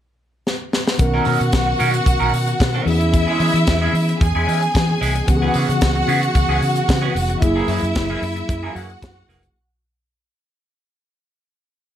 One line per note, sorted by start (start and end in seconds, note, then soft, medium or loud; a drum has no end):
0.47 snare medium
0.73 snare medium
0.87 snare loud
0.98 1.18 B1 medium
0.98 2.82 D#3 medium
0.98 2.83 B3 medium
0.98 2.83 C#4 medium
0.98 2.83 F#4 medium
0.98 2.84 A#4 medium
0.98 2.83 F#5 medium
0.98 muted clean electric guitar stroke soft
0.98 kick loud
0.98 closed hi-hat medium
1.14 1.25 F#3 medium
1.14 1.25 C#4 medium
1.14 1.26 D#4 medium
1.14 1.26 A#4 medium
1.25 1.36 B2 loud
1.25 1.38 F#3 medium
1.25 1.39 C#4 medium
1.25 1.39 D#4 medium
1.25 1.39 A#4 medium
1.25 open hi-hat medium
1.40 1.50 B2 medium
1.40 muted clean electric guitar stroke soft
1.40 closed hi-hat soft
1.53 1.72 B1 medium
1.53 muted clean electric guitar stroke soft
1.53 kick medium
1.53 snare loud
1.53 closed hi-hat medium
1.67 muted clean electric guitar stroke soft
1.79 1.99 B2 medium
1.79 1.95 F#3 medium
1.79 1.93 C#4 medium
1.79 1.92 D#4 medium
1.79 1.92 A#4 medium
1.79 open hi-hat medium
1.93 muted clean electric guitar stroke soft
1.93 closed hi-hat soft
2.06 2.16 B1 loud
2.06 muted clean electric guitar stroke soft
2.06 kick loud
2.06 closed hi-hat medium
2.20 2.29 B1 medium
2.20 2.32 F#3 medium
2.20 2.32 C#4 medium
2.20 2.32 D#4 medium
2.20 2.32 A#4 medium
2.33 2.52 B2 medium
2.33 muted clean electric guitar stroke soft
2.33 open hi-hat medium
2.47 muted clean electric guitar stroke soft
2.47 closed hi-hat soft
2.60 2.79 B2 loud
2.60 muted clean electric guitar stroke soft
2.60 kick medium
2.60 snare loud
2.60 closed hi-hat medium
2.74 2.86 F#3 medium
2.74 2.85 C#4 medium
2.74 2.86 D#4 medium
2.74 2.86 A#4 medium
2.85 3.24 E2 medium
2.85 4.96 E3 medium
2.85 4.97 B3 medium
2.85 4.97 C#4 medium
2.85 4.18 E4 loud
2.85 4.98 G#4 medium
2.85 4.18 E5 loud
2.85 muted clean electric guitar stroke soft
2.85 open hi-hat medium
3.00 muted clean electric guitar stroke soft
3.00 closed hi-hat soft
3.13 muted clean electric guitar stroke soft
3.13 kick medium
3.13 closed hi-hat medium
3.27 3.39 G#3 medium
3.27 3.40 C#4 medium
3.27 3.40 E4 medium
3.27 3.40 G#4 medium
3.40 3.50 E3 loud
3.40 3.53 G#3 medium
3.40 3.53 C#4 medium
3.40 3.53 E4 medium
3.40 3.53 G#4 medium
3.40 open hi-hat medium
3.54 3.63 E3 medium
3.54 muted clean electric guitar stroke soft
3.54 closed hi-hat soft
3.67 3.87 E2 loud
3.67 muted clean electric guitar stroke soft
3.67 kick loud
3.67 snare loud
3.67 closed hi-hat medium
3.82 3.93 G#3 medium
3.82 3.93 C#4 medium
3.82 3.93 E4 medium
3.82 3.93 G#4 medium
3.93 4.13 E3 medium
3.93 muted clean electric guitar stroke soft
3.93 open hi-hat medium
4.09 muted clean electric guitar stroke soft
4.09 closed hi-hat soft
4.21 4.31 E2 medium
4.21 5.26 G#4 medium
4.21 5.26 G#5 medium
4.21 muted clean electric guitar stroke soft
4.21 kick loud
4.21 closed hi-hat medium
4.35 4.44 E2 medium
4.35 4.46 G#3 medium
4.35 4.46 C#4 medium
4.35 4.47 E4 medium
4.35 4.47 G#4 medium
4.47 4.67 E3 medium
4.47 4.60 G#3 medium
4.47 4.60 C#4 medium
4.47 4.60 E4 medium
4.47 4.60 G#4 medium
4.47 open hi-hat medium
4.62 muted clean electric guitar stroke soft
4.62 closed hi-hat soft
4.74 4.94 E3 loud
4.74 muted clean electric guitar stroke soft
4.74 kick medium
4.74 snare loud
4.74 closed hi-hat medium
4.89 muted clean electric guitar stroke soft
5.01 5.20 C2 medium
5.01 5.17 G#3 medium
5.01 5.15 C#4 medium
5.01 5.15 E4 medium
5.01 5.14 G#4 medium
5.01 open hi-hat medium
5.15 muted clean electric guitar stroke soft
5.15 closed hi-hat medium
5.27 5.47 C#2 loud
5.27 7.37 E3 medium
5.27 7.38 B3 medium
5.27 7.38 C#4 medium
5.27 7.38 F#4 medium
5.27 5.36 G4 medium
5.27 7.38 F#5 medium
5.27 muted clean electric guitar stroke soft
5.27 kick loud
5.27 closed hi-hat medium
5.36 7.42 G#4 medium
5.42 5.53 E3 medium
5.42 5.54 B3 medium
5.42 5.54 C#4 medium
5.42 5.54 G#4 medium
5.54 5.65 C#3 medium
5.54 5.67 E3 medium
5.54 5.67 B3 medium
5.54 5.67 C#4 medium
5.54 5.67 G#4 medium
5.54 open hi-hat medium
5.68 5.78 C#3 medium
5.68 muted clean electric guitar stroke soft
5.68 closed hi-hat soft
5.81 6.01 C#2 medium
5.81 muted clean electric guitar stroke soft
5.81 kick medium
5.81 snare loud
5.81 closed hi-hat medium
5.95 muted clean electric guitar stroke soft
6.08 6.27 C#3 medium
6.08 6.24 E3 medium
6.08 6.21 B3 medium
6.08 6.21 C#4 medium
6.08 6.20 G#4 medium
6.08 open hi-hat medium
6.22 muted clean electric guitar stroke soft
6.22 closed hi-hat soft
6.35 6.45 C#2 loud
6.35 muted clean electric guitar stroke soft
6.35 kick loud
6.35 closed hi-hat medium
6.48 6.58 C#2 medium
6.48 6.60 E3 medium
6.48 6.60 B3 medium
6.48 6.61 C#4 medium
6.48 6.61 G#4 medium
6.61 6.81 C#3 medium
6.61 muted clean electric guitar stroke soft
6.61 open hi-hat medium
6.75 muted clean electric guitar stroke soft
6.75 closed hi-hat soft
6.88 7.08 C#3 loud
6.88 muted clean electric guitar stroke soft
6.88 kick loud
6.88 snare loud
6.88 closed hi-hat medium
7.01 7.13 E3 medium
7.01 7.14 B3 medium
7.01 7.14 C#4 medium
7.01 7.14 G#4 medium
7.14 7.34 F1 medium
7.14 muted clean electric guitar stroke soft
7.14 open hi-hat medium
7.29 muted clean electric guitar stroke soft
7.29 closed hi-hat soft
7.41 7.61 F#1 medium
7.41 9.51 F#3 medium
7.41 9.51 A#3 medium
7.41 8.73 E4 medium
7.41 9.52 E4 medium
7.41 9.52 G#4 medium
7.41 8.73 E5 medium
7.41 muted clean electric guitar stroke soft
7.41 kick loud
7.41 closed hi-hat medium
7.56 7.67 E3 medium
7.56 7.68 A#3 medium
7.56 7.68 C#4 medium
7.56 7.68 G#4 loud
7.68 7.78 F#2 medium
7.68 7.81 E3 medium
7.68 7.81 A#3 medium
7.68 7.81 C#4 medium
7.68 7.81 G#4 medium
7.68 open hi-hat medium
7.82 7.91 F#2 medium
7.82 muted clean electric guitar stroke medium
7.82 closed hi-hat soft
7.95 8.15 F#1 medium
7.95 muted clean electric guitar stroke soft
7.95 kick loud
7.95 snare loud
7.95 closed hi-hat medium
8.10 8.22 E3 medium
8.10 8.22 A#3 medium
8.10 8.22 C#4 medium
8.10 8.23 G#4 medium
8.22 8.41 F#2 medium
8.22 muted clean electric guitar stroke medium
8.22 open hi-hat medium
8.36 muted clean electric guitar stroke soft
8.36 closed hi-hat soft
8.49 8.68 F#2 loud
8.49 muted clean electric guitar stroke soft
8.49 kick loud
8.49 closed hi-hat medium
8.63 8.74 E3 medium
8.63 8.74 A#3 medium
8.63 8.75 C#4 medium
8.63 8.75 G#4 medium
8.75 8.94 F#2 medium
8.75 8.88 E3 medium
8.75 8.88 A#3 medium
8.75 8.88 C#4 medium
8.75 9.53 F#4 medium
8.75 8.88 G#4 medium
8.75 9.53 F#5 medium
8.75 open hi-hat medium
8.90 muted clean electric guitar stroke soft
8.90 closed hi-hat soft
9.02 9.21 F#2 loud
9.02 muted clean electric guitar stroke soft
9.02 kick loud
9.02 snare loud
9.02 closed hi-hat medium
9.16 muted clean electric guitar stroke soft
9.28 9.48 F1 medium
9.28 9.44 E3 medium
9.28 9.42 A#3 medium
9.28 9.42 C#4 medium
9.28 9.41 G#4 medium
9.28 open hi-hat medium
9.43 muted clean electric guitar stroke soft
9.43 closed hi-hat soft